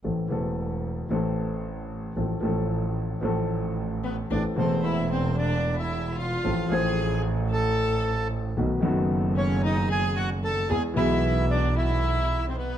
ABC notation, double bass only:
X:1
M:4/4
L:1/8
Q:1/4=113
K:Am
V:1 name="Double bass" clef=bass
A,,, E,,,3 A,,,4 | A,,, A,,,3 A,,,4 | A,,, E,,,6- E,,, | A,,, A,,,6- A,,, |
B,,, ^F,,,6- F,,, | E,, B,,,6- B,,, |]